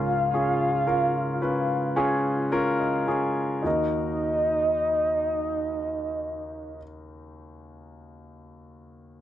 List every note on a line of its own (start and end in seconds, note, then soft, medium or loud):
0.00 3.61 C#2 soft
0.00 3.61 G#2 soft
0.00 0.34 C#4 medium
0.00 0.34 F4 medium
0.00 0.34 G#4 medium
0.00 0.31 A#4 soft
0.00 2.52 F5 medium
0.34 0.85 C#4 medium
0.34 0.85 F4 soft
0.34 0.85 G#4 medium
0.87 1.39 C#4 medium
0.87 1.39 F4 soft
0.87 1.39 A#4 medium
1.41 1.94 C#4 medium
1.41 1.94 F4 soft
1.41 1.94 B4 medium
1.96 2.49 C#4 medium
1.96 2.49 F4 medium
1.96 2.49 G#4 medium
1.96 2.48 G#5 soft
2.52 3.05 C#4 medium
2.52 3.05 F4 medium
2.52 3.05 A#4 medium
2.52 2.78 F5 soft
2.80 3.61 D#5 soft
3.07 3.62 C#4 medium
3.07 3.62 F4 medium
3.07 3.62 G#4 medium
3.63 6.79 D#2 soft
3.63 6.77 D#4 soft
3.63 6.79 F#4 soft
3.63 6.81 A#4 medium
3.63 6.81 D#5 medium